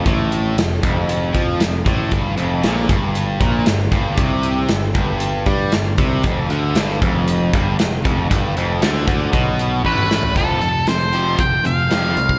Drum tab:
HH |x-x-x-x-x-x-x-x-|x-x-x-x-x-x-x-x-|x-x-x-x-x-x-x-x-|x-x-x-x-x-x-x-x-|
SD |----o-------o---|----o-------o---|----o-------o---|----o-------o---|
T2 |----------------|----------------|----------------|----------------|
FT |----------------|----------------|----------------|----------------|
BD |o-----o---o---o-|o-----o---o---o-|o-----o---o---o-|o-----o---o---o-|

HH |x-x-x-x-x-x-----|x-x-x-x-x-x-x-x-|
SD |----o---------o-|----o-------o---|
T2 |-------------o--|----------------|
FT |---------------o|----------------|
BD |o-----o-o---o---|o-------o------o|